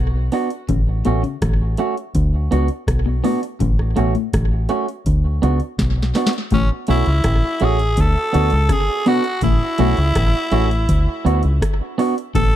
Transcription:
Already playing: fingered electric bass B1
0.32 clean electric guitar B3 D4 F#4, open hi-hat
0.50 closed hi-hat
0.69 fingered electric bass A1, clean electric guitar C#3, kick, closed hi-hat
1.05 fingered electric bass A1, clean electric guitar B2 A3 C#4 F#4, closed hi-hat
1.23 clean electric guitar C#3, closed hi-hat
1.42 fingered electric bass A1, kick, cross-stick, closed hi-hat
1.77 clean electric guitar A3 C#4 F#4, closed hi-hat
1.97 closed hi-hat
2.15 fingered electric bass D2, kick, closed hi-hat
2.51 fingered electric bass C#2, clean electric guitar B3 D4 F#4, closed hi-hat
2.68 closed hi-hat
2.87 fingered electric bass B1, kick, cross-stick, closed hi-hat
3.06 clean electric guitar B2
3.24 clean electric guitar A2 B3 D4 F#4, open hi-hat
3.43 muted clean electric guitar stroke, closed hi-hat
3.60 fingered electric bass A1, clean electric guitar C#3, kick, closed hi-hat
3.79 cross-stick
3.96 fingered electric bass A1, clean electric guitar B2 A3 C#4 F#4, closed hi-hat
4.15 clean electric guitar A2, closed hi-hat
4.33 fingered electric bass A1, kick, cross-stick, closed hi-hat
4.69 clean electric guitar A3 C#4 F#4, closed hi-hat
4.89 closed hi-hat
5.06 fingered electric bass D2, kick, closed hi-hat
5.42 fingered electric bass C#2, clean electric guitar B3 D4 F#4, closed hi-hat
5.60 closed hi-hat
5.78 fingered electric bass B1, kick, snare, closed hi-hat
6.03 snare
6.15 clean electric guitar B3 D4 F#4, snare, open hi-hat
6.27 snare
6.33 closed hi-hat
6.50 fingered electric bass A1, clean electric guitar A2, tenor saxophone C#4, kick, closed hi-hat
6.87 fingered electric bass B1, clean electric guitar B2 A3 C#4 F#4, tenor saxophone E4, closed hi-hat
7.06 fingered electric bass C#2, closed hi-hat
7.24 fingered electric bass A1, kick, cross-stick, closed hi-hat
7.60 fingered electric bass A1, clean electric guitar A3 C#4 F#4, closed hi-hat
7.64 tenor saxophone G#4
7.79 closed hi-hat
7.97 fingered electric bass D2, tenor saxophone A4, kick, closed hi-hat
8.33 fingered electric bass D2, clean electric guitar B3 D4 F#4, closed hi-hat
8.50 fingered electric bass C#2, closed hi-hat
8.69 clean electric guitar C#3, tenor saxophone G#4, kick, cross-stick, closed hi-hat
9.06 clean electric guitar B2 B3 D4 F#4, tenor saxophone F#4, open hi-hat
9.24 closed hi-hat
9.41 fingered electric bass A1, clean electric guitar A2, tenor saxophone E4, kick, closed hi-hat
9.78 fingered electric bass B1, clean electric guitar A2 A3 C#4 F#4, closed hi-hat
9.97 fingered electric bass C#2, closed hi-hat
10.15 fingered electric bass A1, kick, cross-stick, closed hi-hat
10.52 fingered electric bass A1, clean electric guitar A3 C#4 F#4, closed hi-hat
10.71 closed hi-hat
10.89 fingered electric bass D2, kick, closed hi-hat
11.25 fingered electric bass D2, clean electric guitar B3 D4 F#4, closed hi-hat
11.43 fingered electric bass C#2, closed hi-hat
11.61 kick, cross-stick, closed hi-hat
11.98 clean electric guitar B3 D4 F#4, open hi-hat
12.18 closed hi-hat
12.35 fingered electric bass A1, clean electric guitar A2, tenor saxophone A4, kick, closed hi-hat

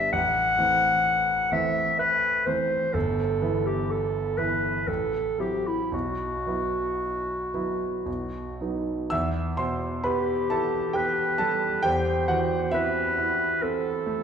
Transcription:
Already playing: grand piano G3 B3 D4, clarinet E5
0.13 grand piano A1, clarinet F#5
0.57 grand piano E3 A3 C4
1.52 grand piano E3 A3 C4, clarinet E5
1.99 clarinet B4
2.46 grand piano E3 A3 C4, clarinet C5
2.94 grand piano G1, clarinet A4
3.42 grand piano E3 B3 E4
3.66 clarinet G4
3.91 clarinet A4
4.38 grand piano E3 B3 E4, clarinet B4
4.87 grand piano A1, clarinet A4
5.38 grand piano F#3 C4 E4, clarinet G4
5.67 clarinet E4
5.92 grand piano B1, clarinet F#4
6.46 grand piano F#3 B3 E4
7.54 grand piano F#3 B3 E4
8.06 grand piano B1
8.61 grand piano F#3 B3 D#4
9.10 grand piano E2 E5 E6
9.57 grand piano B2 C5 C6
10.04 grand piano B3 B4 B5, clarinet G4
10.50 grand piano E4 A4 A5
10.93 grand piano B3 G4 G5, clarinet B4
11.38 grand piano G3 A4 A5
11.83 grand piano E2 G4 G5, clarinet C5
12.28 grand piano E3 F#4 F#5
12.71 grand piano C4 E4 E5, clarinet B4
13.18 grand piano E4
13.62 grand piano C4, clarinet A4
14.06 grand piano A3

